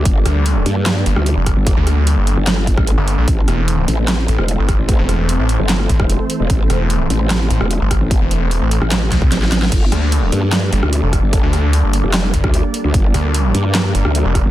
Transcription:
<<
  \new Staff \with { instrumentName = "Supersaw synth" } { \time 4/4 \key g \dorian \tempo 4 = 149 << { <g bes d' d''>1~ | <g bes d' d''>1 | <e a c' c''>1~ | <e a c' c''>1~ |
<e a c' c''>1~ | <e a c' c''>1 | <g bes d' d''>1~ | <g bes d' d''>1~ |
<g bes d' d''>1 | } \\ { a'1~ | a'1~ | a'1~ | a'1~ |
a'1~ | a'1 | a'1~ | a'1 |
bes'1 | } >> }
  \new Staff \with { instrumentName = "Wobble bass" } { \clef bass \time 4/4 \key g \dorian g,,8 r4 g,4 r16 d,8 r8 g,,16~ | g,,16 r4. g,,4 a,,8 r8. | a,,8 r4 a,,4 r16 e,,8 r8 a,,16~ | a,,16 r4. g,,8. r16 e,,8 r8 e,,16 |
a,,8 r4 a,,4 r16 e,,8 r8 a,,16~ | a,,16 r4. a,,8. r8 a,,4 | g,,8 r4 g,4 r16 d,8 r8 g,,16~ | g,,16 r4. f,,8. r16 d,8 r8 d,16 |
g,,8 r4 g,4 r16 d,8 r8 g,,16 | }
  \new Staff \with { instrumentName = "Detuned saw bass" } { \clef bass \time 4/4 \key g \dorian r8 d,4 r4 g,,16 r8 f,,8 r16 | r16 d,4 g,,8 r4. g,,8 bes,,16 | r8 e,,4 r4 a,,16 r8 g,,8 r16 | r16 e,,4 a,,8 r8. a,,16 r4 r16 |
r8 e,,4 r4 a,,16 r8 g,,8 r16 | r16 e,,4 a,,8 r8. c,8 r4 | r8 d,4 r4 g,,16 r8 f,,8 r16 | r16 d,4 g,,8 r8. g,,16 r4 r16 |
r8 d,4 r4 g,,16 r8 f,,8 r16 | }
  \new DrumStaff \with { instrumentName = "Drums" } \drummode { \time 4/4 <hh bd>8 <hh ss>8 hh8 hh8 <hc hh sn>8 hh16 ss16 hh8 <hh bd ss>8 | <hh bd>8 <hh ss>8 hh8 hh8 <hc hh sn>16 ss16 <hh bd>16 <bd ss>16 hh8 hh8 | <hh bd>8 <hh ss>8 hh8 hh8 <hc hh sn>8 hh16 ss16 hh8 <hh bd ss>8 | <hh bd>8 <hh ss>8 hh8 hh8 <hc hh sn>16 ss16 <hh bd>16 <bd ss>16 hh8 hh8 |
<hh bd>8 <hh ss>8 hh8 hh8 <hc hh sn>8 hh16 ss16 hh8 <hh bd ss>8 | <hh bd>8 hh8 hh8 hh16 ss16 <hc hh sn>8 <hh bd sn>16 bd16 <hh sn>16 sn16 <hh sn>16 sn16 | <cymc hh bd>8 <hh ss>8 hh8 hh8 <hc hh sn>8 hh16 ss16 hh8 <hh bd ss>8 | <hh bd>8 <hh ss>8 hh8 hh8 <hc hh sn>16 ss16 <hh bd>16 <bd ss>16 hh8 hh8 |
<hh bd>8 <hh ss>8 hh8 hh8 <hc hh sn>8 hh16 ss16 hh8 <hh bd ss>8 | }
>>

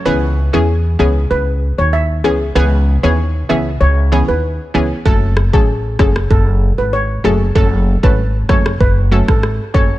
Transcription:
<<
  \new Staff \with { instrumentName = "Steel pan" } { \time 4/4 \key cis \minor \tempo 4 = 96 b'16 r8 gis'16 r8 gis'16 r16 b'16 r8 cis''16 e''16 r16 gis'16 r16 | b'16 r8 cis''16 r8 e''16 r16 cis''16 r8 b'16 r4 | a'16 r8 gis'16 r8 gis'16 r16 a'16 r8 b'16 cis''16 r16 gis'16 r16 | a'16 r8 b'16 r8 cis''16 r16 b'16 r8 a'16 r8 cis''16 r16 | }
  \new Staff \with { instrumentName = "Synth pluck" } { \time 4/4 \key cis \minor <e b cis' gis'>8. <e b cis' gis'>16 r8 <e b cis' gis'>16 r4. r16 <e b cis' gis'>16 r16 | <e b cis' gis'>8. <e b cis' gis'>16 r8 <e b cis' gis'>16 r8. <e b cis' gis'>16 r8. <e b cis' gis'>8 | <fis a cis' a'>8. <fis a cis' a'>16 r8 <fis a cis' a'>16 r4. r16 <fis a cis' a'>16 r16 | <fis a cis' a'>8. <fis a cis' a'>16 r8 <fis a cis' a'>16 r8. <fis a cis' a'>16 r8. <fis a cis' a'>8 | }
  \new Staff \with { instrumentName = "Upright bass" } { \clef bass \time 4/4 \key cis \minor cis,8. e,8. cis,8 cis,8. dis,8. cis,8 | cis,8. dis,8. cis,8 cis,8. dis,8 r16 cis,16 r16 | fis,,8. a,,8. fis,,8 fis,,8. gis,,8. fis,,8 | fis,,8. gis,,8. fis,,8 fis,,8. gis,,8 r16 fis,,16 r16 | }
  \new DrumStaff \with { instrumentName = "Drums" } \drummode { \time 4/4 r4 r4 r4 r4 | r4 r4 r4 r4 | bd8 ss16 bd16 r8 <bd ss>16 ss16 bd4 r4 | bd8. bd16 r8 <bd ss>16 ss16 bd8. <bd ss>16 ss8 bd8 | }
>>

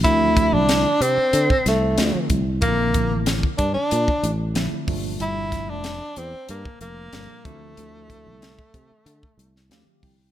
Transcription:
<<
  \new Staff \with { instrumentName = "Tenor saxophone" } { \time 4/4 \key d \minor \tempo 4 = 93 e'8. d'8. c'4 a4 r8 | bes4 r8 d'16 d'4 r4 r16 | e'8. d'8. c'8 bes8 bes4 a8~ | a2. r4 | }
  \new Staff \with { instrumentName = "Tine electric piano" } { \time 4/4 \key d \minor <d f a c' e'>4. r4. <d f a c' f'>8 r8 | <d f c' e' a'>4. r4. <d f a c' e'>8 <bes, f g a d'>8~ | <bes, f g a d'>4 r2 <bes, f g d' a'>8 <d f a c' e'>8~ | <d f a c' e'>4 r2 <d f a c' g' f''>8 g''8 | }
  \new Staff \with { instrumentName = "Fingered electric bass" } { \clef bass \time 4/4 \key d \minor d,8. c,8 r16 c16 r16 d16 r16 c,8 d,16 r16 c,8 | bes,,8. a,,8 r16 g,16 r16 bes,16 r16 a,,8 bes,,16 r16 g,,8 | g,,8. f,,8 r16 e,16 r16 g,16 r16 f,,8 g,,16 r16 d,8 | d,8. c,8 r16 c16 r16 d16 r16 c,8 d,16 r16 c,8 | }
  \new DrumStaff \with { instrumentName = "Drums" } \drummode { \time 4/4 <hh bd>8 <hh bd>8 <hh sn>8 hh8 hh16 bd16 <hh sn>8 <hh sn>8 <hh bd>8 | <hh bd>8 <hh bd>8 <hh sn>16 bd16 <hh bd>8 hh16 bd16 hh8 <hh sn>8 <hho bd>8 | hh8 <hh bd sn>8 <hh sn>8 hh8 hh16 bd16 hh8 <hh sn>8 <hh bd>8 | hh8 <hh bd>8 <hh sn>16 bd16 <hh bd>8 hh16 bd16 hh16 sn16 <hh sn>8 <hho bd>8 | }
>>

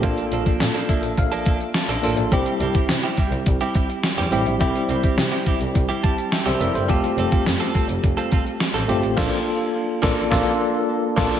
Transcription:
<<
  \new Staff \with { instrumentName = "Tine electric piano" } { \time 4/4 \key c \mixolydian \tempo 4 = 105 << { r4. e''8 f''4 a''4 | r1 | r2 r8 a''8 <e'' g''>16 <c'' e''>16 <bes' d'' e''>16 <a' c''>16~ | <a' c''>16 r2. r8. |
r1 | } \\ { <bes d' f' a'>4. r2 <bes d' f' a'>8 | <g c' e' g'>4. r2 <g c' e' g'>8 | <g c' e' g'>4. r2 r8 | <a c' f' g'>4. r2 <a c' f' g'>8 |
<bes d' f' a'>8 r4 <bes d' f' a'>8 <bes d' f' a'>8 r4 <bes d' f' a'>8 | } >> }
  \new Staff \with { instrumentName = "Clean electric guitar" } { \time 4/4 \key c \mixolydian <f bes d' a'>16 r16 <f bes d' a'>16 <f bes d' a'>16 r16 <f bes d' a'>16 <f bes d' a'>16 r8 <f bes d' a'>16 <f bes d' a'>16 r8 <f bes d' a'>16 <f bes d' a'>16 r16 | <g c' e' g'>16 r16 <g c' e' g'>16 <g c' e' g'>16 r16 <g c' e' g'>16 <g c' e' g'>16 r8 <g c' e' g'>16 <g c' e' g'>16 r8 <g c' e' g'>16 <g c' e' g'>16 r16 | <g c' e' g'>16 r16 <g c' e' g'>16 <g c' e' g'>16 r16 <g c' e' g'>16 <g c' e' g'>16 r8 <g c' e' g'>16 <g c' e' g'>16 r8 <g c' e' g'>16 <g c' e' g'>16 r16 | <g c' f' a'>16 r16 <g c' f' a'>16 <g c' f' a'>16 r16 <g c' f' a'>16 <g c' f' a'>16 r8 <g c' f' a'>16 <g c' f' a'>16 r8 <g c' f' a'>16 <g c' f' a'>16 r16 |
<f bes d' a'>8 r4 <f bes d' a'>8 <f bes d' a'>8 r4 <f bes d' a'>8 | }
  \new Staff \with { instrumentName = "Double bass" } { \clef bass \time 4/4 \key c \mixolydian bes,,8 bes,,8 bes,8 r16 bes,,16 bes,,8 r8. bes,,16 a,,16 bes,,16 | c,8 c,8 c8 r16 c,16 c,8 r8. e,16 a,,16 bes,,16 | c,8 c,8 c8 r16 c,16 c,8 r8. c,16 f,,16 g,,16 | f,,8 f,,8 f,8 r16 f,,16 f,,8 r8. a,,16 g,,16 a,,16 |
bes,,8 r4 bes,,8 bes,,8 r4 bes,,8 | }
  \new DrumStaff \with { instrumentName = "Drums" } \drummode { \time 4/4 <hh bd>16 hh16 hh16 <hh bd>16 <hh sn>16 hh16 <hh bd>16 hh16 <hh bd>16 hh16 <hh bd>16 hh16 <hh sn>16 hh16 hho16 hh16 | <hh bd>16 hh16 hh16 <hh bd>16 <hh sn>16 hh16 <hh bd>16 hh16 <hh bd>16 hh16 <hh bd>16 hh16 <hh sn>16 hh16 hh16 hh16 | <hh bd>16 hh16 hh16 <hh bd>16 <hh sn>16 hh16 <hh bd>16 hh16 <hh bd>16 hh16 <hh bd>16 hh16 <hh sn>16 hh16 hh16 hh16 | <hh bd>16 hh16 hh16 <hh bd>16 <hh sn>16 hh16 <hh bd>16 hh16 <hh bd>16 hh16 <hh bd>16 hh16 <hh sn>16 hh16 hh16 hh16 |
<cymc bd sn>4 r8 <bd sn>8 <bd sn>4 r8 <cymc bd sn>8 | }
>>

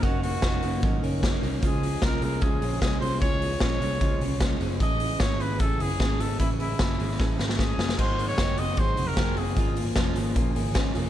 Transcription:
<<
  \new Staff \with { instrumentName = "Trumpet" } { \time 4/4 \key des \major \tempo 4 = 151 ges'8 ges'2 r4. | aes'4 bes'8 bes'8 aes'4 aes'8 c''8 | des''4 des''2 r4 | ees''4 cis''8 ces''8 a'8 gis'4 a'8 |
e'8 e'2 r8 gis'4 | c''8. des''8. ees''8 c''8. bes'8. aes'8~ | aes'8 r2. r8 | }
  \new Staff \with { instrumentName = "Steel-string acoustic guitar" } { \time 4/4 \key des \major <ges des' ees' bes'>8 <des' ees' bes'>8 <ges des' ees' bes'>8 <des' ees' bes'>8 <ges des' ees' bes'>8 <des' ees' bes'>8 <ges des' ees' bes'>8 <des' ees' bes'>8 | <des aes des' f' aes'>8 <des' f' aes'>8 <aes des' f' aes'>8 <des' f' aes'>8 <des aes des' f' aes'>8 <des' f' aes'>8 <aes des' f' aes'>8 <des' f' aes'>8 | <des aes des' f' aes'>8 <des' f' aes'>8 <aes des' f' aes'>8 <des' f' aes'>8 <des aes des' f' aes'>8 <des' f' aes'>8 <aes des' f' aes'>8 <des' f' aes'>8 | <a cis' e' gis'>8 <cis' e' gis'>8 <a cis' e' gis'>8 <cis' e' gis'>8 <a cis' e' gis'>8 <cis' e' gis'>8 <a cis' e' gis'>8 <cis' e' gis'>8 |
<a cis' e' gis'>8 <cis' e' gis'>8 <a cis' e' gis'>8 <cis' e' gis'>8 <a cis' e' gis'>8 <cis' e' gis'>8 <a cis' e' gis'>8 <cis' e' gis'>8 | <aes, ees ges c' ees' aes'>8 <ges c' ees' aes'>8 <aes, ees ges c' ees' aes'>8 <ges c' ees' aes'>8 <ges c' ees' aes'>8 <ges c' ees' aes'>8 <aes, ees ges c' ees' aes'>8 <ges c' ees' aes'>8 | <aes, des f bes f'>8 <f bes f'>8 <aes, des f bes f'>8 <f bes f'>8 <des f bes f'>8 <f bes f'>8 <aes, des f bes f'>8 <f bes f'>8 | }
  \new Staff \with { instrumentName = "Clean electric guitar" } { \clef bass \time 4/4 \key des \major <ees bes des'>8 bes8 ees8 bes8 ees8 des'8 aes16 bes16 ees8 | f8 aes8 f8 aes8 f8 des'8 aes8 f8 | f8 aes8 f8 aes8 f8 des'8 aes8 f8 | e8 gis8 e8 gis8 e8 ces'16 cis'16 gis8 e8 |
e8 gis8 e8 gis8 e8 ces'16 cis'16 gis8 e8 | <ees ges'>8 aes8 c'8 ges'8 aes8 ges'8 c'8 ges'8 | <f aes'>8 bes8 des'8 aes'8 bes8 aes'8 des'8 aes'8 | }
  \new Staff \with { instrumentName = "Picked electric bass" } { \clef bass \time 4/4 \key des \major ges,,4 f,,8 ges,,8 aes,,8 ges,,4 c,8 | des,4 c,8 c,8 des,8 bes,,8 c,8 c,8 | des,4 bes,,8 c,8 des,8 c,4 ges,,8 | a,,4 gis,,8 gis,,8 a,,8 ges,,8 gis,,8 gis,,8 |
a,,4 ges,,8 gis,,8 a,,8 gis,,4 ges,,8 | aes,,4 ges,,8 ges,,8 aes,,8 f,,8 ges,,8 ges,,8 | aes,,4 f,,8 aes,,8 bes,,8 aes,,4 f,,8 | }
  \new DrumStaff \with { instrumentName = "Drums" } \drummode { \time 4/4 <hh bd>8 hho8 <hh bd sn>8 hho8 <hh bd>8 hho8 <hh bd sn>8 hho8 | <hh bd>8 hho8 <hh bd sn>8 hho8 <hh bd>8 hho8 <hh bd sn>8 hho8 | <hh bd>8 hho8 <hh bd sn>8 hho8 <hh bd>8 hho8 <hh bd sn>8 hho8 | <hh bd>8 hho8 <hh bd sn>8 hho8 <hh bd>8 hho8 <hh bd sn>8 hho8 |
<hh bd>8 hho8 <hh bd sn>8 hho8 <bd sn>8 sn16 sn16 <bd sn>8 sn16 sn16 | <cymc bd>8 hho8 <hh bd sn>8 hho8 <hh bd>8 hho8 <hh bd sn>8 hho8 | <hh bd>8 hho8 <hh bd sn>8 hho8 <hh bd>8 hho8 <hh bd sn>8 hho8 | }
>>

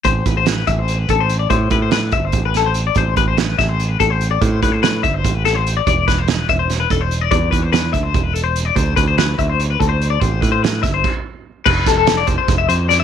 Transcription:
<<
  \new Staff \with { instrumentName = "Clean electric guitar" } { \time 7/8 \key a \minor \tempo 4 = 145 c''8 b'16 c''16 b'8 e''16 c''8 b'16 a'16 c''8 d''16 | c''8 b'16 c''16 b'8 e''16 c''8 b'16 a'16 c''8 d''16 | c''8 b'16 c''16 b'8 e''16 c''8 b'16 a'16 c''8 d''16 | c''8 b'16 c''16 b'8 e''16 c''8 b'16 a'16 c''8 d''16 |
d''8 b'16 c''16 b'8 e''16 c''8 b'16 a'16 c''8 d''16 | d''8 b'16 c''16 b'8 e''16 c''8 b'16 a'16 c''8 d''16 | c''8 b'16 c''16 b'8 e''16 c''8 b'16 a'16 c''8 d''16 | c''8 b'16 c''16 b'8 e''16 c''8 r4 r16 |
b'8 a'16 a'8 d''16 c''16 c''8 e''16 c''8 d''16 e''16 | }
  \new Staff \with { instrumentName = "Picked electric bass" } { \clef bass \time 7/8 \key a \minor a,,8 a,,4 a,,4 a,,4 | a,8 a,4 g,,8 a,,4. | a,,8 a,,4 a,,4 a,,4 | a,8 a,4 g,,8 a,,4. |
e,,8 e,,4 e,,4 e,,4 | e,8 e,4 d,8 e,,4. | d,8 d,4 d,4 d,4 | a,,8 a,4 g,,8 r4. |
f,,8 f,,4 f,,16 r16 f,,8 f,4 | }
  \new DrumStaff \with { instrumentName = "Drums" } \drummode { \time 7/8 <hh bd>8 <hh bd>8 <hh sn>8 <hh bd>8 hh8 <hh bd>8 hh8 | <hh bd>8 <hh bd>8 <hh sn>8 <hh bd>8 <hh bd>8 <hh sn>8 hh8 | <hh bd>8 <hh bd>8 <hh sn>8 <hh bd sn>8 hh8 <hh bd>8 hh8 | <hh bd>8 <hh bd>8 <hh sn>8 <hh bd>8 <hh bd>8 <hh sn>8 hh8 |
<hh bd>8 <hh bd sn>8 <hh sn>8 <hh bd>8 <hh sn>8 <hh bd>8 hh8 | <hh bd>8 <hh bd>8 <hh sn>8 <hh bd>8 <hh bd>8 hh8 hh8 | <hh bd>8 <hh bd>8 <hh sn>8 <hh bd>8 hh8 <hh bd>8 hh8 | <hh bd>8 <hh bd>8 <hh sn>8 <hh bd sn>8 <cymc bd>4. |
<cymc bd>8 <hh bd sn>8 <hh sn>8 <hh bd>8 <hh bd sn>8 hh8 <hh sn>8 | }
>>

